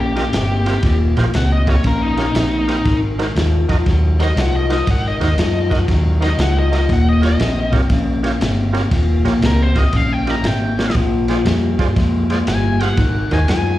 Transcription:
Already playing: A#1 D#2 C#3
0.00 G4
0.15 C#3 F4 G4 A#4 D#5, snare, ride
0.33 G1 D#2 C3, snare, ride
0.66 D#2 C3 F4 G4 A#4 C5, snare, ride
0.82 D#1 D#2 A#2, kick, snare, ride
1.17 A#1 D#2 A#2 F4 G4 A#4 C5, snare, ride
1.34 C#2 D#2 C3 F#5, snare, ride
1.52 D#5
1.66 D#2 C3 F4 G4 A#4 C#5 D#5, kick, snare, ride
1.84 A#1 D#2 C#3 A#4, kick, snare, ride
2.02 D#4
2.17 D#2 C#3 F4 G4 A#4 C#5, snare, ride
2.35 A#1 D#2 C3, snare, ride
2.67 D#2 C3 F4 G4 A#4 C5, snare, ride
2.85 G#1 G#2 D#3, kick, snare, ride
3.18 G#2 D#3 D#4 F#4 A#4 C5, snare, ride
3.35 D#2 G#2 F3, snare, ride
3.68 F2 G#2 F3 D#4 F#4 A#4 D#5, kick, snare, ride
3.86 D#2 G#2 F#3, kick, snare, ride
4.19 G#2 F#3 D#4 F#4 A#4 C5, snare, ride
4.24 D#5
4.36 C2 G#2 F3, snare, ride
4.41 F#5
4.56 D#5
4.69 G#2 F3 D#4 F#4 A#4 C5 D#5, snare, ride
4.87 G#1 G#2 D#3 F#5, kick, snare, ride
5.07 D#5
5.20 D#2 G#2 D#3 D#4 F#4 A#4 C5, snare, ride
5.24 D#5
5.37 F#2 G#2 F3, snare, ride
5.70 G#2 F3 D#4 F#4 A#4 D#5, kick, snare, ride
5.88 D#2 G#2 F#3, kick, snare, ride
6.20 G#2 F#3 D#4 F#4 A#4 C5 D#5, snare, ride
6.38 C#2 G#2 F3 F#5, snare, ride
6.59 D#5
6.71 G#2 F3 D#4 F#4 A#4 D#5, snare, ride
6.89 D#1 D#2 A#2 F#5, kick, snare, ride
7.09 D#5
7.21 D#2 A#2 F4 G4 A#4 C#5, snare, ride
7.26 D#5
7.39 A#1 D#2 C3, snare, ride
7.72 C2 D#2 C3 F4 G4 A#4 C#5, kick, snare, ride
7.90 A#1 D#2 C#3, kick, snare, ride
8.23 D#2 C#3 F4 G4 A#4 C#5, snare, ride
8.40 G1 D#2 C3, snare, ride
8.73 D#2 C3 F4 G4 A#4 C#5, snare, ride
8.91 D#1 D#2 A#2, kick, snare, ride
9.24 A#1 D#2 A#2 F4 G4 A#4 C#5, snare, ride
9.41 C#2 D#2 C3, snare, ride
9.45 A#4
9.62 C5
9.75 D#2 C3 F4 G4 A#4 D#5, kick, snare, ride
9.93 A#1 D#2 C#3 F5, kick, snare, ride
10.13 G5
10.27 D#2 C#3 F4 G4 A#4 D#5 A#5, snare, ride
10.43 G#1 D#2 C3, snare, ride
10.47 G5
10.78 D#2 C3 F4 G4 A#4 C#5, snare
10.90 snare
10.95 A#1 A#2 F3, kick, ride
11.28 A#2 F3 F4 G#4 C5 D5, snare, ride
11.45 F2 A#2 G3, snare, ride
11.78 G2 A#2 G3 F4 G#4 C5 D5, kick, snare, ride
11.96 F2 A#2 G#3, kick, snare, ride
12.30 A#2 G#3 F4 G#4 C5 D5, snare, ride
12.47 G1 A#2 G3 G#5, snare, ride
12.80 A#2 G3 F4 G#4 C5 F5 F#5, snare, ride
12.97 G#1 G#2 D#3, kick, snare, ride
13.31 D#2 G#2 D#3 F#4 A#4 C5 D#5 G#5, snare, ride
13.48 F#2 G#2 F3 G#5, snare, ride

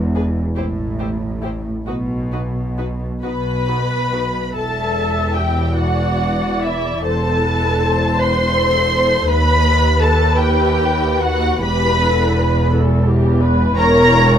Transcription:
Already playing: E1 E2
0.15 D4 G#4 B4
0.56 A1 A2 E4 G4 C5
1.00 E4 G4 C5
1.42 E4 G4 C5
1.86 B1 B2 D#4 F#4 B4
2.32 D#4 F#4 B4
2.78 D#4 F#4 B4
3.23 B1 B2 D#4 F#4 B4 B5
3.67 D#4 F#4 B4
4.12 D#4 F#4 B4
4.54 E1 E2 A4 E5 A5
5.36 G4 G5
5.75 F#4 D5 F#5
6.60 E4 E5
7.03 E1 E2 A4 C5 A5
7.43 B4
7.80 C5
8.17 B4 C5 C6
8.55 A4
8.92 A4
9.27 D#2 B4 B5
10.00 A4 A5
10.37 G4 G5
11.19 F#4 F#5
11.61 E1 E2 G4 B4 B5
12.02 A4
12.39 B4
12.72 A4
13.07 G4
13.42 B4
13.77 E1 E2 A#4 C#5 A#5

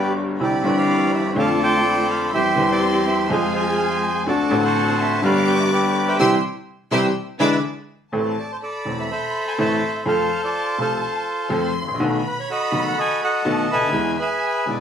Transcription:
Already playing: G1 G2 D3 G3 B3 D4 G4 B4 D5 D6
0.38 C2 C3 D3 G3 C4 D4 E4 B5
0.42 G4 D5
0.62 G1 G2 D3 E3 G3 C4 D4
0.66 E3
0.78 D5 F5
1.15 E5
1.34 F2 D3 F3 A3 C4 D4 F4
1.38 F4 A4 D5 F5 A5
1.63 C5 D5 G5
1.84 B5
2.10 F5
2.32 E2 E3 G3 C4 E4 G4 C5 E5 C6
2.56 E2 E3 G3 C4 E4 G4
2.72 G4 D5
3.07 E5
3.28 F2 F3 G#3 C4 F4 G#4 C5 F5 G#5
3.32 G#4
3.55 G#4 C5 F5
4.25 D2 D3 A3 C4 D4 F#4 A4 D5 A5
4.49 A1 A2 D3 A3 C4 D4 F#4
4.64 A4 C5 F#5
5.01 E5
5.22 G1 G2 D3 G3 B3 D4 G4 B4 D5 F5 D6
5.47 G5
5.59 E5
5.72 G4 B4 D5
6.08 G4 C5 E5
6.18 C3 E3 G3 C4 E4 G4 C5 E5 G5 C6 E6
6.91 C3 E3 G3 C4 E4 G4 C5 E5 G5 C6 E6
7.39 D3 E3 G#3 D4 E4 G#4 B4 D5 E5 B5 D6 E6
8.12 A1 A2 E3 A3 C4 A4 A5
8.40 D5
8.52 C5
8.63 A4 D5 B5
8.85 E1 E2 E3 A3 C4 A4
9.00 E5
9.11 A4 C5 E5
9.48 G#5
9.58 A1 A2 E3 A3 C4 A4 C5 E5 A5
9.96 E5 B5
10.05 F2 F3 A3 C4 A4 C5 F5 A5
10.45 F4 A4 D5
10.78 C2 C3 F3 A3 C4 F4 A4 C5
11.49 F2 F3 A3 C4 A4 C6
11.82 G#1
11.88 A1
11.94 A#1
11.99 B1 B2 D#3 A3 B3 F#4 B5
12.27 B4
12.39 C#5
12.50 F#4 A4 D#5
12.71 F#1 F#2 D#3 A3 B3 F#4
12.88 F#5
12.99 D#5 G#5
13.22 A4 D#5 F#5
13.44 B1 B2 D#3 A3 B3 F#4 A5
13.71 C#2 B4 E5 G#5
13.80 D2
13.87 D#2
13.92 E2 E3 G#3 B3 G#4 G#5
14.19 G#4 B4 E5
14.66 B1 B2 E3 G#3 B3 G#4
14.70 D5

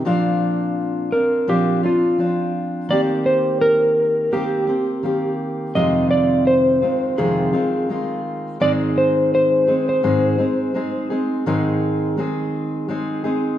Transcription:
0.05 A#2 F3 C4 D4 F4
1.12 C4 D4 F4 A#4
1.47 A#2 F3 C4 D4 F4 G4
1.83 C4 D4 F4
2.18 F3 C4 D4 F4
2.89 D#3 A#3 C4 G4 D5
3.26 C5
3.61 A#4
4.32 D#3 A#3 C4 G4
4.67 A#3 C4 G4
5.03 D#3 A#3 C4 G4
5.75 F2 C3 D#3 G#3 C4 F4 D#5
6.11 D5
6.47 C5
6.82 D#3 G#3 C4 F4
7.17 F2 C3 D#3 G#3 C4 F4 G#4
7.53 D#3 G#3 C4 F4
7.89 D#3 G#3 C4 F4
8.60 G#2 D#3 G#3 C4 D#4 G#4 D5
8.98 C5
9.35 C5
9.67 G#3 C4 D#4 G#4
9.89 C5
10.03 G#2 D#3 G#3 C4 D#4 G#4
10.38 G#3 C4 D#4 G#4
10.74 G#3 C4 D#4 G#4
11.10 G#3 C4 D#4 G#4
11.46 G#2 D#3 G#3 C4 D#4 G#4
12.17 G#3 C4 D#4 G#4
12.88 G#3 C4 D#4 G#4
13.24 G#3 C4 D#4 G#4

